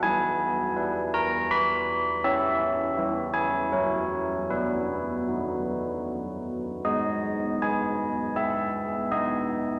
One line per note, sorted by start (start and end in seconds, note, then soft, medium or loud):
0.03 0.74 E3 medium
0.03 1.09 G#5 medium
0.76 2.20 E4 soft
0.76 2.20 B4 soft
1.14 1.49 A#5 medium
1.51 2.21 B5 medium
2.24 2.95 C#4 medium
2.24 2.93 E4 soft
2.24 2.94 C#5 soft
2.24 3.30 E5 loud
2.97 3.70 E3 medium
2.97 3.68 E4 soft
2.97 3.68 C#5 soft
3.34 3.70 G#5 medium
3.72 4.48 F#3 soft
3.72 4.46 E4 soft
3.72 4.46 A#4 soft
3.72 4.47 C#5 medium
4.50 5.26 B3 soft
4.50 6.03 B4 medium
5.28 6.81 D#4 soft
5.28 6.81 F#4 soft
6.85 7.60 G#3 medium
6.85 7.59 D#5 medium
7.62 8.33 B3 soft
7.62 8.33 G#4 soft
7.62 8.34 G#5 medium
8.36 9.07 B3 soft
8.36 9.08 G#4 soft
8.36 9.08 E5 medium
9.12 9.79 B3 medium
9.12 9.79 D#5 medium